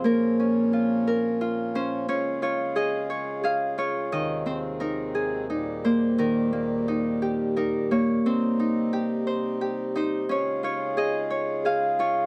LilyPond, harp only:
\new Staff \with { instrumentName = "Harp" } { \time 3/4 \key des \lydian \tempo 4 = 88 << { bes'4 r4. c''8 | des''8 des''8 ees''4 f''8 des''8 | ees''8 c''8 bes'4. c''8 | bes'2 bes'8 des''8 |
c''4 r4. c''8 | des''8 des''8 ees''4 f''8 des''8 | } \\ { bes8 des'8 f'8 bes'8 f'8 des'8 | des'8 f'8 aes'8 des''8 aes'8 f'8 | ees8 c'8 ees'8 aes'8 ees'8 bes8 | ees8 bes8 ees'8 g'8 ees'8 bes8 |
c'8 ees'8 g'8 c''8 g'8 ees'8 | des'8 f'8 aes'8 des''8 aes'8 f'8 | } >> }